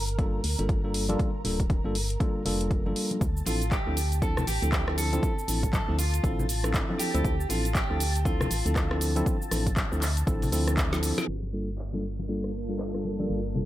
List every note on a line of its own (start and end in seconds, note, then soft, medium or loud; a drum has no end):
0.00 0.40 G1 medium
0.00 3.22 A#4 medium
0.09 closed hi-hat medium
0.18 0.40 G3 medium
0.18 0.40 A#3 medium
0.18 0.40 D4 medium
0.18 0.40 F4 medium
0.18 0.40 A4 loud
0.18 kick loud
0.18 closed hi-hat soft
0.44 0.56 D2 medium
0.44 open hi-hat loud
0.59 1.16 G1 medium
0.59 0.80 G3 medium
0.59 0.81 A#3 medium
0.59 0.81 D4 medium
0.59 0.81 F4 medium
0.59 0.81 A4 medium
0.59 closed hi-hat medium
0.69 kick loud
0.69 closed hi-hat soft
0.84 1.06 G3 medium
0.84 1.06 A#3 medium
0.84 1.06 D4 medium
0.84 1.06 F4 medium
0.84 1.06 A4 medium
0.94 open hi-hat loud
1.09 1.29 G3 loud
1.09 1.29 A#3 medium
1.09 1.29 D4 medium
1.09 1.29 F4 medium
1.09 1.29 A4 loud
1.09 closed hi-hat medium
1.09 high conga medium
1.19 kick loud
1.19 closed hi-hat soft
1.44 1.80 D1 medium
1.44 1.60 G3 medium
1.44 1.60 A#3 medium
1.44 1.60 D4 medium
1.44 1.60 F4 medium
1.44 1.60 A4 medium
1.44 open hi-hat loud
1.60 kick medium
1.60 closed hi-hat medium
1.70 kick loud
1.70 closed hi-hat soft
1.70 high conga medium
1.85 2.17 G1 medium
1.85 1.95 G3 medium
1.85 1.95 A#3 medium
1.85 1.95 D4 medium
1.85 1.95 F4 medium
1.85 1.96 A4 medium
1.95 open hi-hat loud
2.10 closed hi-hat medium
2.20 2.42 G3 medium
2.20 2.42 A#3 medium
2.20 2.42 D4 medium
2.20 2.42 F4 medium
2.20 2.42 A4 loud
2.20 kick loud
2.20 closed hi-hat soft
2.45 2.87 F1 medium
2.45 2.82 G3 medium
2.45 2.82 A#3 medium
2.45 2.82 D4 medium
2.45 2.82 F4 medium
2.45 2.83 A4 medium
2.45 open hi-hat loud
2.61 closed hi-hat medium
2.71 kick loud
2.71 closed hi-hat soft
2.86 2.94 G1 medium
2.86 3.20 G3 medium
2.86 3.20 A#3 medium
2.86 3.20 D4 medium
2.86 3.20 F4 medium
2.86 3.20 A4 medium
2.86 high conga medium
2.96 open hi-hat medium
3.11 closed hi-hat medium
3.11 high conga medium
3.21 3.42 D2 loud
3.21 11.29 A5 medium
3.21 kick loud
3.21 closed hi-hat soft
3.21 cabasa soft
3.37 cabasa soft
3.46 3.82 A1 medium
3.46 3.62 F3 medium
3.46 3.62 C4 medium
3.46 3.62 D4 medium
3.46 3.62 E4 medium
3.46 3.72 F4 medium
3.46 3.62 A4 medium
3.46 open hi-hat medium
3.46 cabasa medium
3.62 closed hi-hat medium
3.62 cabasa soft
3.72 4.22 G4 medium
3.72 kick loud
3.72 clap loud
3.72 closed hi-hat soft
3.72 cabasa soft
3.86 4.44 D2 medium
3.86 3.97 F3 medium
3.86 3.97 C4 medium
3.86 3.97 D4 medium
3.86 3.97 E4 medium
3.86 3.97 A4 medium
3.97 open hi-hat loud
3.97 cabasa medium
4.12 closed hi-hat medium
4.12 cabasa soft
4.22 4.43 F3 medium
4.22 4.43 C4 medium
4.22 4.43 D4 medium
4.22 4.44 E4 medium
4.22 4.47 A4 loud
4.22 4.44 A4 loud
4.22 kick loud
4.22 closed hi-hat soft
4.22 cabasa soft
4.37 cross-stick medium
4.37 low conga medium
4.37 cabasa soft
4.47 4.59 A1 medium
4.47 4.98 G4 loud
4.47 open hi-hat loud
4.47 cabasa medium
4.62 5.20 D2 medium
4.62 4.84 F3 medium
4.62 4.84 C4 medium
4.62 4.84 D4 medium
4.62 4.84 E4 medium
4.62 4.84 A4 medium
4.62 closed hi-hat medium
4.62 cabasa soft
4.72 kick loud
4.72 cross-stick medium
4.72 clap loud
4.72 closed hi-hat soft
4.72 cabasa soft
4.87 5.09 F3 medium
4.87 5.09 C4 medium
4.87 5.09 D4 medium
4.87 5.09 E4 medium
4.87 5.10 A4 medium
4.87 cross-stick medium
4.98 5.72 A4 loud
4.98 open hi-hat loud
4.98 cabasa medium
5.12 5.32 F3 loud
5.12 5.32 C4 medium
5.12 5.32 D4 medium
5.12 5.32 E4 medium
5.12 5.33 A4 loud
5.12 closed hi-hat medium
5.12 high conga medium
5.12 cabasa soft
5.23 kick loud
5.23 closed hi-hat soft
5.23 cabasa soft
5.39 cabasa soft
5.48 5.83 A1 medium
5.48 5.63 F3 medium
5.48 5.63 C4 medium
5.48 5.63 D4 medium
5.48 5.64 E4 medium
5.48 5.64 A4 medium
5.48 open hi-hat loud
5.48 cabasa medium
5.63 kick medium
5.63 closed hi-hat medium
5.63 cabasa soft
5.73 5.98 A4 loud
5.73 kick loud
5.73 clap loud
5.73 closed hi-hat soft
5.73 high conga medium
5.73 cabasa soft
5.88 6.20 D2 medium
5.88 5.99 F3 medium
5.88 5.99 C4 medium
5.88 5.99 D4 medium
5.88 5.99 E4 medium
5.88 5.99 A4 loud
5.99 6.70 F4 medium
5.99 open hi-hat medium
5.99 cabasa medium
6.14 closed hi-hat medium
6.14 cabasa soft
6.23 6.84 A1 loud
6.23 6.45 F3 medium
6.23 6.45 C4 medium
6.23 6.45 D4 medium
6.23 6.45 E4 medium
6.23 6.45 A4 loud
6.23 kick loud
6.23 closed hi-hat medium
6.23 cabasa soft
6.39 low conga medium
6.39 cabasa soft
6.49 open hi-hat loud
6.49 cabasa medium
6.64 6.85 F3 medium
6.64 6.86 C4 medium
6.64 6.86 D4 medium
6.64 6.86 E4 medium
6.64 6.86 A4 medium
6.64 cross-stick medium
6.64 closed hi-hat medium
6.64 cabasa soft
6.74 kick loud
6.74 clap loud
6.74 closed hi-hat medium
6.74 cabasa soft
6.89 7.11 F3 medium
6.89 7.11 C4 medium
6.89 7.11 D4 medium
6.89 7.11 E4 medium
6.89 7.11 A4 medium
6.89 high conga medium
6.99 7.50 G4 loud
6.99 open hi-hat loud
6.99 cabasa medium
7.14 7.22 D2 medium
7.14 7.34 F3 loud
7.14 7.34 C4 medium
7.14 7.34 D4 loud
7.14 7.34 E4 loud
7.14 7.34 A4 loud
7.14 closed hi-hat medium
7.14 cabasa soft
7.25 7.45 D2 loud
7.25 kick loud
7.25 closed hi-hat medium
7.25 cabasa soft
7.40 cabasa soft
7.49 7.85 A1 medium
7.49 7.65 F3 medium
7.49 7.65 C4 medium
7.49 7.65 D4 medium
7.49 7.65 E4 medium
7.49 7.73 F4 medium
7.49 7.65 A4 medium
7.49 open hi-hat medium
7.49 cabasa medium
7.65 closed hi-hat medium
7.65 cabasa soft
7.75 8.25 G4 loud
7.75 kick loud
7.75 clap loud
7.75 closed hi-hat medium
7.75 cabasa soft
7.90 8.47 D2 medium
7.90 8.00 F3 medium
7.90 8.00 C4 medium
7.90 8.00 D4 medium
7.90 8.01 E4 medium
7.90 8.01 A4 medium
8.00 open hi-hat loud
8.00 cabasa medium
8.16 closed hi-hat medium
8.16 cabasa soft
8.25 8.47 F3 medium
8.25 8.47 C4 medium
8.25 8.47 D4 medium
8.25 8.47 E4 medium
8.25 10.74 F4 medium
8.25 8.47 A4 loud
8.25 kick loud
8.25 closed hi-hat medium
8.25 cabasa soft
8.40 cross-stick medium
8.40 low conga medium
8.40 cabasa soft
8.51 8.63 A1 medium
8.51 open hi-hat medium
8.51 cabasa medium
8.65 9.23 D2 medium
8.65 8.87 F3 medium
8.65 8.87 C4 medium
8.65 8.87 D4 medium
8.65 8.88 E4 medium
8.65 8.88 A4 medium
8.65 closed hi-hat medium
8.65 cabasa soft
8.76 kick loud
8.76 cross-stick medium
8.76 clap loud
8.76 closed hi-hat soft
8.76 cabasa soft
8.91 9.12 F3 medium
8.91 9.12 C4 medium
8.91 9.13 D4 medium
8.91 9.13 E4 medium
8.91 9.13 A4 medium
8.91 cross-stick medium
9.01 open hi-hat medium
9.01 cabasa medium
9.16 9.35 F3 loud
9.16 9.36 C4 loud
9.16 9.36 D4 medium
9.16 9.36 E4 loud
9.16 9.36 A4 loud
9.16 closed hi-hat medium
9.16 high conga medium
9.16 cabasa soft
9.26 kick loud
9.26 closed hi-hat medium
9.26 cabasa soft
9.42 cabasa soft
9.51 9.87 A1 medium
9.51 9.67 F3 medium
9.51 9.67 C4 medium
9.51 9.67 D4 medium
9.51 9.67 E4 medium
9.51 9.67 A4 medium
9.51 cross-stick medium
9.51 open hi-hat loud
9.51 cabasa medium
9.67 kick medium
9.67 closed hi-hat medium
9.67 cabasa soft
9.77 kick loud
9.77 clap loud
9.77 closed hi-hat medium
9.77 high conga medium
9.77 cabasa soft
9.91 10.24 D2 medium
9.91 10.02 F3 medium
9.91 10.02 C4 medium
9.91 10.02 D4 medium
9.91 10.02 E4 medium
9.91 10.02 A4 medium
9.91 cabasa soft
10.02 clap medium
10.02 open hi-hat loud
10.02 cabasa medium
10.17 closed hi-hat medium
10.17 cabasa soft
10.27 10.52 A1 loud
10.27 10.48 F3 medium
10.27 10.48 C4 medium
10.27 10.49 D4 medium
10.27 10.49 E4 medium
10.27 10.49 A4 loud
10.27 kick loud
10.27 closed hi-hat medium
10.27 cabasa soft
10.42 open hi-hat medium
10.42 low conga medium
10.42 cabasa soft
10.52 11.13 D2 medium
10.52 10.89 F3 medium
10.52 10.89 C4 medium
10.52 10.89 D4 medium
10.52 10.89 E4 medium
10.52 10.89 A4 loud
10.52 open hi-hat medium
10.52 cabasa medium
10.68 cross-stick medium
10.68 closed hi-hat medium
10.68 cabasa soft
10.77 kick loud
10.77 clap loud
10.77 closed hi-hat medium
10.77 cabasa soft
10.92 11.27 F3 medium
10.92 11.27 C4 medium
10.92 11.27 D4 medium
10.92 11.27 E4 medium
10.92 11.27 A4 medium
10.92 snare medium
10.92 high conga medium
10.92 cabasa soft
11.03 open hi-hat loud
11.03 cabasa medium
11.18 snare medium
11.18 closed hi-hat medium
11.18 high conga medium
11.18 cabasa soft
11.28 13.28 G1 medium
11.28 13.65 A#3 medium
11.28 13.65 F4 medium
11.28 13.65 D5 medium
11.28 13.65 F5 medium
11.28 13.65 A5 medium
11.28 13.65 E6 medium
11.43 13.65 A5 medium
11.43 muted conga soft
11.53 11.68 G3 medium
11.53 11.68 A#3 medium
11.53 11.69 D4 medium
11.53 11.69 F4 medium
11.53 11.69 A4 medium
11.53 13.65 A#4 medium
11.78 clap loud
11.93 12.04 G3 medium
11.93 12.04 A#3 medium
11.93 12.04 D4 medium
11.93 12.04 F4 medium
11.93 12.04 A4 medium
11.93 muted conga soft
12.19 muted conga medium
12.28 12.50 G3 medium
12.28 12.50 A#3 medium
12.28 12.50 D4 medium
12.28 12.50 F4 medium
12.28 12.50 A4 medium
12.44 cross-stick medium
12.69 12.91 G3 medium
12.69 12.91 A#3 medium
12.69 12.91 D4 medium
12.69 12.91 F4 medium
12.69 12.91 A4 medium
12.79 cross-stick medium
12.79 clap loud
12.94 13.16 G3 medium
12.94 13.16 A#3 medium
12.94 13.16 D4 medium
12.94 13.16 F4 medium
12.94 13.16 A4 medium
12.94 cross-stick medium
13.04 muted conga soft
13.19 13.39 G3 medium
13.19 13.39 A#3 medium
13.19 13.39 D4 medium
13.19 13.39 F4 medium
13.19 13.39 A4 loud
13.19 high conga medium
13.30 13.65 G1 medium
13.55 13.65 G3 medium
13.55 13.65 A#3 medium
13.55 13.65 D4 medium
13.55 13.65 F4 medium
13.55 13.65 A4 medium
13.55 low conga medium